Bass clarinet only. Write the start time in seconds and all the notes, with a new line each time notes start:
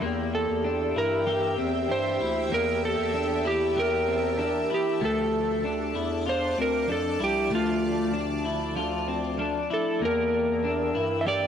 0.02 E2
0.49 E2
0.95 G2
1.58 E2
1.89 G2
2.21 D2
2.52 E2
2.98 E2
3.75 E2
5.01 D2
5.48 D2
5.94 E2
6.57 D2
6.88 F2
7.19 C2
7.51 D2
7.97 D2
8.76 D2
10.01 E2
10.48 E2
10.95 G2